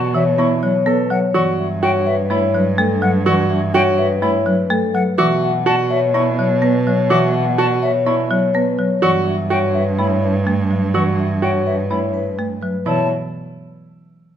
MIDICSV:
0, 0, Header, 1, 6, 480
1, 0, Start_track
1, 0, Tempo, 480000
1, 1344, Time_signature, 4, 2, 24, 8
1, 14369, End_track
2, 0, Start_track
2, 0, Title_t, "Flute"
2, 0, Program_c, 0, 73
2, 146, Note_on_c, 0, 76, 54
2, 236, Note_off_c, 0, 76, 0
2, 385, Note_on_c, 0, 85, 54
2, 475, Note_off_c, 0, 85, 0
2, 1104, Note_on_c, 0, 78, 62
2, 1194, Note_off_c, 0, 78, 0
2, 1345, Note_on_c, 0, 85, 74
2, 1435, Note_off_c, 0, 85, 0
2, 1823, Note_on_c, 0, 79, 75
2, 1914, Note_off_c, 0, 79, 0
2, 2061, Note_on_c, 0, 76, 58
2, 2151, Note_off_c, 0, 76, 0
2, 2304, Note_on_c, 0, 83, 53
2, 2394, Note_off_c, 0, 83, 0
2, 3022, Note_on_c, 0, 78, 62
2, 3113, Note_off_c, 0, 78, 0
2, 3258, Note_on_c, 0, 85, 76
2, 3349, Note_off_c, 0, 85, 0
2, 3739, Note_on_c, 0, 79, 84
2, 3830, Note_off_c, 0, 79, 0
2, 3980, Note_on_c, 0, 76, 53
2, 4071, Note_off_c, 0, 76, 0
2, 4222, Note_on_c, 0, 83, 57
2, 4312, Note_off_c, 0, 83, 0
2, 4941, Note_on_c, 0, 78, 68
2, 5032, Note_off_c, 0, 78, 0
2, 5181, Note_on_c, 0, 86, 83
2, 5271, Note_off_c, 0, 86, 0
2, 5664, Note_on_c, 0, 81, 79
2, 5754, Note_off_c, 0, 81, 0
2, 5902, Note_on_c, 0, 76, 56
2, 5993, Note_off_c, 0, 76, 0
2, 6141, Note_on_c, 0, 85, 60
2, 6231, Note_off_c, 0, 85, 0
2, 7102, Note_on_c, 0, 86, 82
2, 7192, Note_off_c, 0, 86, 0
2, 7583, Note_on_c, 0, 81, 81
2, 7673, Note_off_c, 0, 81, 0
2, 7822, Note_on_c, 0, 76, 60
2, 7912, Note_off_c, 0, 76, 0
2, 8061, Note_on_c, 0, 85, 60
2, 8152, Note_off_c, 0, 85, 0
2, 9024, Note_on_c, 0, 85, 81
2, 9114, Note_off_c, 0, 85, 0
2, 9500, Note_on_c, 0, 79, 65
2, 9591, Note_off_c, 0, 79, 0
2, 9742, Note_on_c, 0, 76, 52
2, 9832, Note_off_c, 0, 76, 0
2, 9983, Note_on_c, 0, 83, 55
2, 10073, Note_off_c, 0, 83, 0
2, 10942, Note_on_c, 0, 85, 68
2, 11032, Note_off_c, 0, 85, 0
2, 11421, Note_on_c, 0, 79, 60
2, 11512, Note_off_c, 0, 79, 0
2, 11664, Note_on_c, 0, 76, 47
2, 11754, Note_off_c, 0, 76, 0
2, 11903, Note_on_c, 0, 83, 45
2, 11993, Note_off_c, 0, 83, 0
2, 12864, Note_on_c, 0, 81, 68
2, 13087, Note_off_c, 0, 81, 0
2, 14369, End_track
3, 0, Start_track
3, 0, Title_t, "Vibraphone"
3, 0, Program_c, 1, 11
3, 0, Note_on_c, 1, 74, 69
3, 151, Note_on_c, 1, 73, 68
3, 216, Note_off_c, 1, 74, 0
3, 389, Note_on_c, 1, 74, 57
3, 458, Note_off_c, 1, 73, 0
3, 628, Note_on_c, 1, 73, 66
3, 698, Note_off_c, 1, 74, 0
3, 873, Note_on_c, 1, 71, 74
3, 937, Note_off_c, 1, 73, 0
3, 1110, Note_on_c, 1, 73, 60
3, 1179, Note_off_c, 1, 71, 0
3, 1350, Note_on_c, 1, 74, 80
3, 1418, Note_off_c, 1, 73, 0
3, 1588, Note_on_c, 1, 76, 57
3, 1658, Note_off_c, 1, 74, 0
3, 1829, Note_on_c, 1, 73, 58
3, 1897, Note_off_c, 1, 76, 0
3, 2065, Note_on_c, 1, 71, 76
3, 2138, Note_off_c, 1, 73, 0
3, 2304, Note_on_c, 1, 73, 66
3, 2376, Note_off_c, 1, 71, 0
3, 2542, Note_on_c, 1, 71, 60
3, 2616, Note_off_c, 1, 73, 0
3, 2784, Note_on_c, 1, 69, 80
3, 2855, Note_off_c, 1, 71, 0
3, 3022, Note_on_c, 1, 71, 62
3, 3096, Note_off_c, 1, 69, 0
3, 3267, Note_on_c, 1, 74, 82
3, 3335, Note_off_c, 1, 71, 0
3, 3499, Note_on_c, 1, 76, 65
3, 3577, Note_off_c, 1, 74, 0
3, 3742, Note_on_c, 1, 73, 63
3, 3814, Note_off_c, 1, 76, 0
3, 3981, Note_on_c, 1, 71, 84
3, 4055, Note_off_c, 1, 73, 0
3, 4222, Note_on_c, 1, 73, 63
3, 4295, Note_off_c, 1, 71, 0
3, 4462, Note_on_c, 1, 71, 68
3, 4535, Note_off_c, 1, 73, 0
3, 4701, Note_on_c, 1, 69, 81
3, 4775, Note_off_c, 1, 71, 0
3, 4937, Note_on_c, 1, 71, 56
3, 5015, Note_off_c, 1, 69, 0
3, 5177, Note_on_c, 1, 76, 80
3, 5253, Note_off_c, 1, 71, 0
3, 5422, Note_on_c, 1, 78, 65
3, 5493, Note_off_c, 1, 76, 0
3, 5663, Note_on_c, 1, 74, 71
3, 5735, Note_off_c, 1, 78, 0
3, 5904, Note_on_c, 1, 73, 74
3, 5975, Note_off_c, 1, 74, 0
3, 6143, Note_on_c, 1, 74, 61
3, 6216, Note_off_c, 1, 73, 0
3, 6390, Note_on_c, 1, 73, 69
3, 6456, Note_off_c, 1, 74, 0
3, 6630, Note_on_c, 1, 71, 76
3, 6698, Note_off_c, 1, 73, 0
3, 6869, Note_on_c, 1, 73, 67
3, 6938, Note_off_c, 1, 71, 0
3, 7110, Note_on_c, 1, 76, 77
3, 7177, Note_off_c, 1, 73, 0
3, 7342, Note_on_c, 1, 78, 67
3, 7418, Note_off_c, 1, 76, 0
3, 7582, Note_on_c, 1, 74, 64
3, 7655, Note_off_c, 1, 78, 0
3, 7826, Note_on_c, 1, 73, 72
3, 7895, Note_off_c, 1, 74, 0
3, 8065, Note_on_c, 1, 74, 63
3, 8136, Note_off_c, 1, 73, 0
3, 8306, Note_on_c, 1, 73, 67
3, 8376, Note_off_c, 1, 74, 0
3, 8542, Note_on_c, 1, 71, 76
3, 8617, Note_off_c, 1, 73, 0
3, 8782, Note_on_c, 1, 73, 55
3, 8855, Note_off_c, 1, 71, 0
3, 9025, Note_on_c, 1, 74, 77
3, 9095, Note_off_c, 1, 73, 0
3, 9268, Note_on_c, 1, 76, 57
3, 9336, Note_off_c, 1, 74, 0
3, 9505, Note_on_c, 1, 73, 58
3, 9577, Note_off_c, 1, 76, 0
3, 9745, Note_on_c, 1, 71, 69
3, 9816, Note_off_c, 1, 73, 0
3, 9988, Note_on_c, 1, 73, 54
3, 10056, Note_off_c, 1, 71, 0
3, 10226, Note_on_c, 1, 71, 53
3, 10297, Note_off_c, 1, 73, 0
3, 10537, Note_off_c, 1, 71, 0
3, 10704, Note_on_c, 1, 71, 52
3, 10940, Note_on_c, 1, 74, 61
3, 11016, Note_off_c, 1, 71, 0
3, 11181, Note_on_c, 1, 76, 51
3, 11255, Note_off_c, 1, 74, 0
3, 11420, Note_on_c, 1, 73, 52
3, 11495, Note_off_c, 1, 76, 0
3, 11662, Note_on_c, 1, 71, 62
3, 11734, Note_off_c, 1, 73, 0
3, 11902, Note_on_c, 1, 73, 46
3, 11975, Note_off_c, 1, 71, 0
3, 12136, Note_on_c, 1, 71, 57
3, 12215, Note_off_c, 1, 73, 0
3, 12453, Note_off_c, 1, 71, 0
3, 12615, Note_on_c, 1, 71, 49
3, 12860, Note_on_c, 1, 73, 62
3, 12933, Note_off_c, 1, 71, 0
3, 13085, Note_off_c, 1, 73, 0
3, 14369, End_track
4, 0, Start_track
4, 0, Title_t, "Grand piano"
4, 0, Program_c, 2, 0
4, 0, Note_on_c, 2, 66, 69
4, 216, Note_off_c, 2, 66, 0
4, 385, Note_on_c, 2, 64, 65
4, 696, Note_off_c, 2, 64, 0
4, 865, Note_on_c, 2, 69, 57
4, 1176, Note_off_c, 2, 69, 0
4, 1344, Note_on_c, 2, 66, 75
4, 1656, Note_off_c, 2, 66, 0
4, 1827, Note_on_c, 2, 66, 74
4, 2137, Note_off_c, 2, 66, 0
4, 2305, Note_on_c, 2, 64, 63
4, 2616, Note_off_c, 2, 64, 0
4, 3261, Note_on_c, 2, 66, 82
4, 3575, Note_off_c, 2, 66, 0
4, 3744, Note_on_c, 2, 66, 85
4, 4056, Note_off_c, 2, 66, 0
4, 4222, Note_on_c, 2, 64, 67
4, 4535, Note_off_c, 2, 64, 0
4, 5182, Note_on_c, 2, 66, 87
4, 5495, Note_off_c, 2, 66, 0
4, 5661, Note_on_c, 2, 66, 85
4, 5975, Note_off_c, 2, 66, 0
4, 6141, Note_on_c, 2, 64, 62
4, 6455, Note_off_c, 2, 64, 0
4, 7104, Note_on_c, 2, 66, 80
4, 7416, Note_off_c, 2, 66, 0
4, 7583, Note_on_c, 2, 66, 83
4, 7896, Note_off_c, 2, 66, 0
4, 8063, Note_on_c, 2, 64, 66
4, 8375, Note_off_c, 2, 64, 0
4, 9021, Note_on_c, 2, 66, 83
4, 9335, Note_off_c, 2, 66, 0
4, 9503, Note_on_c, 2, 66, 73
4, 9816, Note_off_c, 2, 66, 0
4, 9986, Note_on_c, 2, 64, 54
4, 10296, Note_off_c, 2, 64, 0
4, 10942, Note_on_c, 2, 66, 63
4, 11255, Note_off_c, 2, 66, 0
4, 11423, Note_on_c, 2, 66, 66
4, 11735, Note_off_c, 2, 66, 0
4, 11905, Note_on_c, 2, 64, 48
4, 12216, Note_off_c, 2, 64, 0
4, 12860, Note_on_c, 2, 64, 58
4, 13085, Note_off_c, 2, 64, 0
4, 14369, End_track
5, 0, Start_track
5, 0, Title_t, "Marimba"
5, 0, Program_c, 3, 12
5, 145, Note_on_c, 3, 52, 77
5, 384, Note_on_c, 3, 59, 59
5, 456, Note_off_c, 3, 52, 0
5, 628, Note_on_c, 3, 54, 57
5, 696, Note_off_c, 3, 59, 0
5, 863, Note_on_c, 3, 59, 78
5, 937, Note_off_c, 3, 54, 0
5, 1103, Note_on_c, 3, 54, 57
5, 1176, Note_off_c, 3, 59, 0
5, 1345, Note_on_c, 3, 52, 71
5, 1416, Note_off_c, 3, 54, 0
5, 1656, Note_off_c, 3, 52, 0
5, 2301, Note_on_c, 3, 57, 57
5, 2545, Note_on_c, 3, 54, 59
5, 2615, Note_off_c, 3, 57, 0
5, 2782, Note_on_c, 3, 57, 83
5, 2856, Note_off_c, 3, 54, 0
5, 3022, Note_on_c, 3, 54, 63
5, 3095, Note_off_c, 3, 57, 0
5, 3260, Note_on_c, 3, 52, 76
5, 3335, Note_off_c, 3, 54, 0
5, 3575, Note_off_c, 3, 52, 0
5, 4222, Note_on_c, 3, 57, 59
5, 4461, Note_on_c, 3, 54, 65
5, 4535, Note_off_c, 3, 57, 0
5, 4701, Note_on_c, 3, 57, 84
5, 4775, Note_off_c, 3, 54, 0
5, 4946, Note_on_c, 3, 54, 57
5, 5015, Note_off_c, 3, 57, 0
5, 5189, Note_on_c, 3, 52, 75
5, 5256, Note_off_c, 3, 54, 0
5, 5498, Note_off_c, 3, 52, 0
5, 6145, Note_on_c, 3, 59, 64
5, 6388, Note_on_c, 3, 54, 58
5, 6456, Note_off_c, 3, 59, 0
5, 6621, Note_on_c, 3, 59, 77
5, 6697, Note_off_c, 3, 54, 0
5, 6867, Note_on_c, 3, 54, 58
5, 6935, Note_off_c, 3, 59, 0
5, 7102, Note_on_c, 3, 52, 73
5, 7177, Note_off_c, 3, 54, 0
5, 7415, Note_off_c, 3, 52, 0
5, 8066, Note_on_c, 3, 59, 54
5, 8306, Note_on_c, 3, 54, 66
5, 8376, Note_off_c, 3, 59, 0
5, 8546, Note_on_c, 3, 59, 74
5, 8616, Note_off_c, 3, 54, 0
5, 8789, Note_on_c, 3, 54, 57
5, 8857, Note_off_c, 3, 59, 0
5, 9028, Note_on_c, 3, 52, 68
5, 9098, Note_off_c, 3, 54, 0
5, 9337, Note_off_c, 3, 52, 0
5, 9986, Note_on_c, 3, 57, 51
5, 10297, Note_off_c, 3, 57, 0
5, 10467, Note_on_c, 3, 57, 72
5, 10707, Note_on_c, 3, 54, 47
5, 10777, Note_off_c, 3, 57, 0
5, 10947, Note_on_c, 3, 52, 67
5, 11017, Note_off_c, 3, 54, 0
5, 11257, Note_off_c, 3, 52, 0
5, 11909, Note_on_c, 3, 57, 48
5, 12218, Note_off_c, 3, 57, 0
5, 12385, Note_on_c, 3, 57, 61
5, 12626, Note_on_c, 3, 54, 47
5, 12696, Note_off_c, 3, 57, 0
5, 12863, Note_on_c, 3, 52, 56
5, 12936, Note_off_c, 3, 54, 0
5, 13086, Note_off_c, 3, 52, 0
5, 14369, End_track
6, 0, Start_track
6, 0, Title_t, "Cello"
6, 0, Program_c, 4, 42
6, 0, Note_on_c, 4, 47, 68
6, 1207, Note_off_c, 4, 47, 0
6, 1345, Note_on_c, 4, 43, 67
6, 5048, Note_off_c, 4, 43, 0
6, 5187, Note_on_c, 4, 47, 69
6, 8889, Note_off_c, 4, 47, 0
6, 9027, Note_on_c, 4, 43, 75
6, 12729, Note_off_c, 4, 43, 0
6, 12862, Note_on_c, 4, 47, 50
6, 13086, Note_off_c, 4, 47, 0
6, 14369, End_track
0, 0, End_of_file